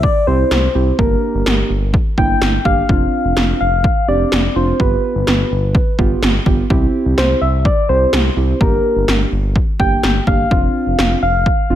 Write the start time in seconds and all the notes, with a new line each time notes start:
0.03 D5, kick
0.27 C2 C4 E4 G4 C5
0.51 C2, snare
0.75 C2 C4 E4 G4
0.99 G1 A#3 D4 G4 A#4, kick
1.35 G1
1.46 G1, snare
1.70 G1
1.94 kick
2.18 G1 A#3 D4 E4 G5, kick
2.42 G1, snare
2.65 G1 A#3 D4 G4 F5, kick
2.89 F1 C4 D4 F4, kick
3.25 F1
3.37 F1, snare
3.61 F1 F5
3.84 kick
4.08 F1 C4 D4 G4 D5
4.32 F1, snare
4.56 F1 C4 D4 F4 C5
4.80 G1 B3 F4 G4 B4, kick
5.15 G1
5.27 G1, snare
5.51 G1
5.75 kick
5.99 G1 B3 F4 G4, kick
6.22 G1, snare
6.46 G1 B3 F4 G4, kick
6.70 C2 C4 E4 G4, kick
7.06 C2
7.18 C2 C5, snare
7.42 C2 E5
7.60 E5
7.65 D5, kick
7.89 C2 C4 E4 G4 C5
8.13 C2, snare
8.37 C2 C4 E4 G4
8.61 G1 A#3 D4 G4 A#4, kick
8.96 G1
9.08 G1, snare
9.32 G1
9.56 kick
9.80 G1 A#3 D4 G4 G5, kick
10.03 G1, snare
10.27 G1 A#3 D4 G4 F5, kick
10.51 F1 C4 D4 F4, kick
10.87 F1
10.99 F1, snare
11.23 F1 F5
11.46 kick
11.70 F1 C4 D4 F4